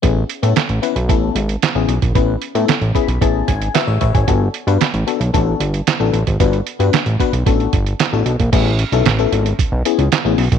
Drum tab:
CC |----------------|----------------|----------------|----------------|
HH |x-xxxxxxx-xxx-xx|x-xxxxxxx-xxx-xx|x-xxxxxxx-xxx-xx|xxxxxxxxxxxxx-xx|
CP |----x-------x---|----x-------x---|----x-------x---|----x-------x---|
SD |----o-------o---|----o-------o---|----o-------o---|----o-------o---|
BD |o-------o------o|o-----o-o-o---oo|o-------o------o|o-----o-o-o----o|

CC |x---------------|
HH |x-xxxxxxx-xxx-ox|
CP |----x-------x---|
SD |----o-------o---|
BD |o-------o------o|